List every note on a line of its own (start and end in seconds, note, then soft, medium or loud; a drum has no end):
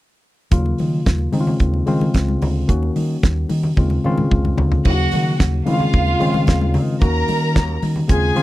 0.51 0.72 D#2 medium
0.51 1.31 C#3 medium
0.51 1.33 F#3 medium
0.51 1.33 A#3 medium
0.51 1.34 F4 medium
0.51 kick loud
0.51 closed hi-hat medium
0.51 muted conga soft
0.66 muted conga soft
0.78 1.00 D#3 medium
0.78 open hi-hat soft
0.78 high conga medium
1.06 1.27 D#2 medium
1.06 kick loud
1.06 snare loud
1.06 closed hi-hat medium
1.06 muted conga soft
1.06 high conga medium
1.19 muted conga soft
1.32 1.76 C#3 medium
1.32 1.54 D#3 medium
1.32 1.76 G#3 medium
1.32 1.77 C4 medium
1.32 1.40 D#4 medium
1.32 open hi-hat medium
1.32 high conga medium
1.40 1.80 F4 medium
1.47 low conga medium
1.60 1.81 D#2 loud
1.60 kick medium
1.60 closed hi-hat medium
1.60 muted conga soft
1.74 muted conga soft
1.86 2.49 C#3 medium
1.86 2.08 D#3 loud
1.86 2.50 G#3 medium
1.86 2.50 C4 medium
1.86 2.50 F4 medium
1.86 open hi-hat soft
1.86 high conga soft
2.01 high conga medium
2.14 2.35 C#2 medium
2.14 kick medium
2.14 snare loud
2.14 closed hi-hat medium
2.14 muted conga soft
2.28 muted conga soft
2.28 high conga medium
2.42 2.62 D2 medium
2.42 open hi-hat medium
2.42 low conga medium
2.68 2.89 D#2 loud
2.68 3.52 D#3 medium
2.68 3.52 A#3 medium
2.68 3.52 C#4 medium
2.68 3.53 F#4 medium
2.68 kick medium
2.68 closed hi-hat medium
2.68 muted conga soft
2.83 muted conga soft
2.96 3.16 D#3 medium
2.96 open hi-hat medium
2.96 high conga medium
3.23 3.44 D#2 medium
3.23 kick loud
3.23 snare medium
3.23 closed hi-hat medium
3.23 muted conga soft
3.23 high conga medium
3.49 3.71 D#3 medium
3.49 open hi-hat medium
3.49 high conga medium
3.63 low conga medium
3.77 3.98 D#2 loud
3.77 3.99 C#3 medium
3.77 3.99 G#3 medium
3.77 3.99 C4 medium
3.77 4.00 F4 medium
3.77 kick loud
3.77 high tom medium
3.77 muted conga soft
3.90 high tom soft
3.90 muted conga soft
4.04 4.67 C#3 medium
4.04 4.25 D#3 loud
4.04 4.67 G#3 medium
4.04 4.67 C4 medium
4.04 4.68 F4 loud
4.04 mid tom medium
4.04 high conga medium
4.18 mid tom medium
4.18 high conga medium
4.31 4.52 C#2 medium
4.31 kick medium
4.31 mid tom medium
4.31 muted conga soft
4.45 mid tom medium
4.45 muted conga soft
4.45 high conga medium
4.58 4.79 D2 medium
4.58 floor tom medium
4.58 low conga medium
4.72 floor tom medium
4.85 5.06 D#2 medium
4.85 5.65 C#3 medium
4.85 5.67 F#3 medium
4.85 5.67 A#3 medium
4.85 4.93 E4 medium
4.85 5.39 F#4 medium
4.85 5.39 F#5 medium
4.85 kick loud
4.85 crash medium
4.85 muted conga soft
4.93 5.71 F#4 medium
5.11 5.33 D#3 medium
5.11 open hi-hat medium
5.11 high conga medium
5.39 5.60 D#2 medium
5.39 kick loud
5.39 snare loud
5.39 closed hi-hat medium
5.39 muted conga soft
5.39 high conga medium
5.66 6.10 C#3 medium
5.66 5.88 D#3 medium
5.66 6.10 G#3 medium
5.66 6.10 C4 medium
5.66 5.74 E4 medium
5.66 6.73 F4 medium
5.66 6.73 F5 medium
5.66 open hi-hat medium
5.66 high conga medium
5.74 6.14 F4 medium
5.80 low conga medium
5.93 6.14 D#2 loud
5.93 kick loud
5.93 closed hi-hat medium
6.07 muted conga soft
6.20 6.83 C#3 medium
6.20 6.31 D#3 medium
6.20 6.83 G#3 medium
6.20 6.83 C4 medium
6.20 6.83 F4 medium
6.20 open hi-hat medium
6.20 high conga soft
6.34 6.45 D#3 medium
6.34 high conga medium
6.47 6.77 D#2 loud
6.47 kick medium
6.47 snare loud
6.47 closed hi-hat medium
6.61 muted conga soft
6.61 high conga medium
6.74 6.95 D#3 medium
6.74 open hi-hat medium
6.74 low conga loud
7.01 7.22 D#2 medium
7.01 7.85 D#3 medium
7.01 7.85 A#3 medium
7.01 7.85 C#4 medium
7.01 7.85 F#4 medium
7.01 7.81 A#4 medium
7.01 7.81 A#5 medium
7.01 kick loud
7.01 closed hi-hat medium
7.01 muted conga soft
7.28 7.58 D#3 medium
7.28 open hi-hat medium
7.28 high conga medium
7.56 7.76 D#2 medium
7.56 kick loud
7.56 snare loud
7.56 closed hi-hat medium
7.56 high conga medium
7.69 muted conga soft
7.82 8.03 D#3 medium
7.82 open hi-hat medium
7.82 high conga medium
7.96 low conga medium
8.08 8.30 D#2 medium
8.08 8.31 C#3 medium
8.08 8.31 G#3 medium
8.08 8.31 C4 medium
8.08 8.32 F4 medium
8.08 8.43 G#4 medium
8.08 8.43 G#5 medium
8.08 kick loud
8.08 closed hi-hat medium
8.35 8.43 C#3 medium
8.35 8.43 D#3 loud
8.35 8.43 G#3 medium
8.35 8.43 C4 medium
8.35 8.43 F4 loud
8.35 open hi-hat medium
8.35 high conga medium